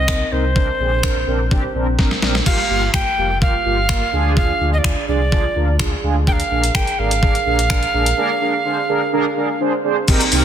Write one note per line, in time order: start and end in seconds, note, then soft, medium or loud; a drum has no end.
0.00 0.23 C2 medium
0.00 0.33 D#5 loud
0.08 0.20 C4 medium
0.08 0.20 D#4 medium
0.08 0.20 A#4 medium
0.08 finger snap loud
0.08 kick loud
0.32 0.71 C2 medium
0.32 0.44 C4 medium
0.32 0.44 D#4 medium
0.32 0.44 A#4 medium
0.32 1.99 C5 medium
0.55 0.68 C4 loud
0.55 0.68 D4 medium
0.55 0.68 A#4 loud
0.55 kick loud
0.79 1.09 A#1 medium
0.79 0.92 C4 medium
0.79 0.92 D4 medium
0.79 0.92 G#4 medium
1.03 1.15 C4 medium
1.03 1.16 D4 medium
1.03 1.16 A#4 loud
1.03 finger snap loud
1.03 kick loud
1.16 1.25 A#1 medium
1.27 1.66 A#1 loud
1.27 1.39 C4 medium
1.27 1.39 D4 medium
1.27 1.39 A#4 loud
1.51 1.63 C4 loud
1.51 1.63 D4 loud
1.51 1.63 G4 loud
1.51 kick loud
1.74 2.14 A#1 medium
1.74 1.87 C4 medium
1.74 1.87 D4 medium
1.74 1.87 A#4 medium
1.98 2.11 C4 medium
1.98 2.11 D4 medium
1.98 2.11 A#4 loud
1.98 kick loud
1.98 snare medium
2.11 snare medium
2.22 2.42 A#1 medium
2.22 2.34 C4 medium
2.22 2.35 D4 medium
2.22 2.35 A#4 loud
2.22 snare medium
2.35 snare medium
2.46 2.58 A#3 loud
2.46 2.58 F4 medium
2.46 2.59 G4 loud
2.46 2.91 F5 loud
2.46 kick loud
2.46 crash medium
2.70 2.90 G1 medium
2.70 2.82 A#3 medium
2.70 2.82 F4 medium
2.70 2.82 G4 medium
2.94 3.04 G1 medium
2.94 3.06 A#3 medium
2.94 3.06 F4 medium
2.94 3.06 G4 medium
2.94 3.38 G5 loud
2.94 finger snap loud
2.94 kick loud
3.17 3.57 F1 medium
3.17 3.30 A#3 medium
3.17 3.30 F4 medium
3.17 3.30 G4 medium
3.41 3.54 A#3 loud
3.41 3.54 F4 medium
3.41 3.54 G4 loud
3.41 4.33 F5 loud
3.41 kick loud
3.65 4.04 G1 loud
3.65 3.77 A#3 medium
3.65 3.77 F4 medium
3.65 3.78 G4 medium
3.89 4.01 A#3 medium
3.89 4.01 F4 medium
3.89 4.01 A#4 medium
3.89 finger snap loud
3.89 kick loud
4.13 4.52 D2 medium
4.13 4.51 D4 medium
4.13 4.52 F4 medium
4.13 4.52 G#4 loud
4.37 4.71 F5 loud
4.37 kick loud
4.60 4.80 D2 medium
4.60 4.73 D4 medium
4.60 4.73 F4 medium
4.60 4.73 G#4 medium
4.73 4.79 D#5 medium
4.78 5.06 D5 medium
4.84 4.95 D2 medium
4.84 4.96 D4 medium
4.84 4.97 F4 medium
4.84 4.97 G#4 medium
4.84 finger snap loud
4.84 kick loud
5.08 5.47 C2 medium
5.08 5.20 D4 medium
5.08 5.20 F4 medium
5.08 5.20 G#4 medium
5.08 5.76 D5 medium
5.32 5.44 D4 loud
5.32 5.44 F4 medium
5.32 5.44 G#4 loud
5.32 kick loud
5.55 5.95 D2 loud
5.55 5.68 D4 medium
5.55 5.68 F4 medium
5.55 5.68 A#4 medium
5.79 5.92 D4 medium
5.79 5.92 F4 medium
5.79 5.92 G#4 loud
5.79 finger snap loud
5.79 kick loud
6.03 6.42 D2 medium
6.03 6.15 D4 medium
6.03 6.16 F4 medium
6.03 6.16 G#4 loud
6.27 6.39 D4 loud
6.27 6.39 G#4 medium
6.27 6.39 A#4 loud
6.27 6.33 G5 medium
6.27 kick loud
6.32 6.76 F5 loud
6.40 closed hi-hat medium
6.51 6.70 A#1 medium
6.51 6.63 D4 medium
6.51 6.63 G#4 medium
6.51 6.63 A#4 medium
6.64 closed hi-hat medium
6.75 6.85 A#1 medium
6.75 6.87 D4 medium
6.75 6.87 G#4 medium
6.75 6.87 A#4 medium
6.75 7.00 G5 loud
6.75 finger snap loud
6.75 kick loud
6.87 closed hi-hat soft
6.98 7.38 G#1 medium
6.98 7.11 D4 medium
6.98 7.11 G#4 medium
6.98 7.11 A#4 medium
6.98 9.61 F5 loud
7.11 closed hi-hat medium
7.22 7.34 D4 medium
7.22 7.35 G#4 medium
7.22 7.35 A#4 loud
7.22 kick loud
7.35 closed hi-hat medium
7.46 7.85 A#1 loud
7.46 7.58 D4 medium
7.46 7.58 G#4 medium
7.46 7.59 A#4 medium
7.59 closed hi-hat medium
7.70 7.82 D4 medium
7.70 7.82 G#4 medium
7.70 7.82 A#4 loud
7.70 finger snap loud
7.70 kick loud
7.83 closed hi-hat medium
7.94 8.13 A#1 medium
7.94 8.06 D4 medium
7.94 8.06 G#4 medium
7.94 8.06 A#4 loud
8.06 closed hi-hat medium
8.17 8.30 D4 loud
8.17 8.30 G#4 loud
8.17 8.30 A#4 loud
8.41 8.53 D4 medium
8.41 8.54 G#4 medium
8.41 8.54 A#4 loud
8.65 8.77 D4 medium
8.65 8.77 G#4 medium
8.65 8.78 C5 loud
8.89 9.01 D4 loud
8.89 9.01 G#4 medium
8.89 9.01 A#4 loud
9.13 9.25 D4 loud
9.13 9.25 G#4 loud
9.13 9.25 A#4 loud
9.36 9.49 D4 medium
9.36 9.49 G#4 medium
9.36 9.49 A#4 loud
9.60 9.73 D4 medium
9.60 9.73 G#4 medium
9.60 9.73 C5 loud
9.84 9.96 D4 medium
9.84 9.97 G#4 medium
9.84 9.97 C5 loud
10.08 10.20 C4 loud
10.08 10.20 D#4 loud
10.08 10.20 G4 loud
10.08 10.20 A#4 loud
10.08 kick loud
10.08 crash loud
10.08 shaker medium
10.21 closed hi-hat medium
10.21 shaker medium
10.32 10.45 C2 loud
10.32 10.44 C4 medium
10.32 10.44 D#4 medium
10.32 10.44 G4 medium
10.32 10.44 A#4 loud
10.32 open hi-hat medium
10.32 shaker medium